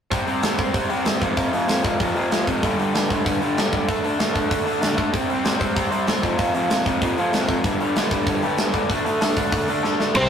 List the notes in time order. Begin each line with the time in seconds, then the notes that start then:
0.11 C3 G3 C4, kick, open hi-hat
0.27 C3 G3 C4, open hi-hat
0.43 C3 G3 C4, snare, open hi-hat
0.58 C3 G3 C4, kick, open hi-hat
0.74 C3 G3 C4, kick, open hi-hat
0.89 C3 G3 C4, open hi-hat
1.05 C3 G3 C4, snare, open hi-hat
1.21 F2 C3 F3, kick, open hi-hat
1.37 F2 C3 F3, kick, open hi-hat
1.52 F2 C3 F3, open hi-hat
1.68 F2 C3 F3, snare, open hi-hat
1.83 F2 C3 F3, kick, open hi-hat
1.99 F2 C3 F3, kick, open hi-hat
2.15 F2 C3 F3, open hi-hat
2.31 F2 C3 F3, snare, open hi-hat
2.47 F2 C3 F3, kick, open hi-hat
2.63 G2 D3 G3, kick, open hi-hat
2.78 G2 D3 G3, open hi-hat
2.94 G2 D3 G3, snare, open hi-hat
3.10 G2 D3 G3, kick, open hi-hat
3.26 G2 D3 G3, kick, open hi-hat
3.42 G2 D3 G3, open hi-hat
3.58 G2 D3 G3, snare, open hi-hat
3.72 G2 D3 G3, kick, open hi-hat
3.88 D3 A3 D4, kick, open hi-hat
4.04 D3 A3 D4, open hi-hat
4.19 D3 A3 D4, snare, open hi-hat
4.34 D3 A3 D4, kick, open hi-hat
4.50 D3 A3 D4, kick, open hi-hat
4.66 D3 A3 D4, open hi-hat
4.82 D3 A3 D4, snare, open hi-hat
4.97 D3 A3 D4, kick, open hi-hat
5.12 C3 G3 C4, kick, open hi-hat
5.29 C3 G3 C4, open hi-hat
5.44 C3 G3 C4, snare, open hi-hat
5.60 C3 G3 C4, kick, open hi-hat
5.76 C3 G3 C4, kick, open hi-hat
5.92 C3 G3 C4, open hi-hat
6.07 C3 G3 C4, snare, open hi-hat
6.22 F2 C3 F3, kick, open hi-hat
6.39 F2 C3 F3, kick, open hi-hat
6.54 F2 C3 F3, open hi-hat
6.70 F2 C3 F3, snare, open hi-hat
6.86 F2 C3 F3, kick, open hi-hat
7.02 F2 C3 F3, kick, open hi-hat
7.18 F2 C3 F3, open hi-hat
7.33 F2 C3 F3, snare, open hi-hat
7.48 F2 C3 F3, kick, open hi-hat
7.64 G2 D3 G3, kick, open hi-hat
7.80 G2 D3 G3, open hi-hat
7.96 G2 D3 G3, snare, open hi-hat
8.11 G2 D3 G3, kick, open hi-hat
8.27 G2 D3 G3, kick, open hi-hat
8.43 G2 D3 G3, open hi-hat
8.58 G2 D3 G3, snare, open hi-hat
8.73 G2 D3 G3, kick, open hi-hat
8.90 D3 A3 D4, kick, open hi-hat
9.05 D3 A3 D4, open hi-hat
9.21 D3 A3 D4, snare, open hi-hat
9.37 D3 A3 D4, kick, open hi-hat
9.52 D3 A3 D4, kick, open hi-hat
9.68 D3 A3 D4, open hi-hat
9.83 D3 A3 D4, snare
10.00 D3 A3 D4, snare
10.15 C2 C3 G3 C4 C5, kick, crash